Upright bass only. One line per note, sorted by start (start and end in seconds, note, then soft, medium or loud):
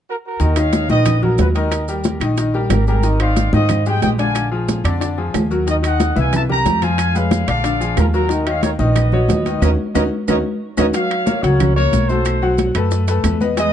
0.40 0.86 D#2 medium
0.89 1.35 A#1 medium
1.38 2.15 D#2 medium
2.20 2.67 A#1 medium
2.70 3.47 G#1 loud
3.53 3.99 G#2 medium
4.03 4.79 A#1 medium
4.84 5.30 F2 medium
5.34 6.11 D#2 medium
6.16 6.62 C2 medium
6.66 7.42 F2 loud
7.48 7.94 A#1 medium
7.97 8.74 D#2 medium
8.79 9.26 A#1 medium
9.28 9.60 D#2 medium
9.62 9.74 D#2 loud
9.95 10.07 D#2 medium
10.28 10.40 D#2 medium
10.77 10.90 D#2 medium
11.43 11.89 C#2 loud
11.92 12.69 B1 medium
12.75 13.21 F#2 loud
13.24 13.73 E2 loud